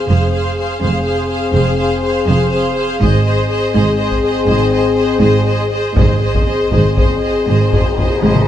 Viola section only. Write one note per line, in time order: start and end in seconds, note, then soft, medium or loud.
0.10 0.32 G#4 soft
0.33 0.57 G#4 soft
0.58 0.80 G#4 soft
0.81 1.05 G#4 soft
1.06 1.29 G#4 soft
1.30 1.53 G#4 soft
1.54 1.78 G#4 soft
1.79 2.03 G#4 soft
2.05 2.25 G#4 soft
2.26 2.51 G#4 soft
2.52 2.75 G#4 soft
2.76 2.99 G#4 soft
3.00 3.24 G#4 medium
3.25 3.48 G#4 soft
3.49 3.72 G#4 soft
3.73 3.96 G#4 medium
3.98 4.22 G#4 soft
4.24 4.47 G#4 soft
4.48 4.71 G#4 medium
4.72 4.96 G#4 soft
4.97 5.18 G#4 soft
5.20 5.45 G#4 soft
5.46 5.70 G#4 soft
5.71 5.94 G#4 soft
5.95 6.20 G#4 soft
6.21 6.45 G#4 soft
6.46 6.70 G#4 soft
6.71 6.94 G#4 soft
6.96 7.19 G#4 soft
7.20 7.46 G#4 soft
7.47 7.69 G#4 soft
7.71 7.94 G#4 soft
7.95 8.19 G#4 soft
8.20 8.46 G#4 soft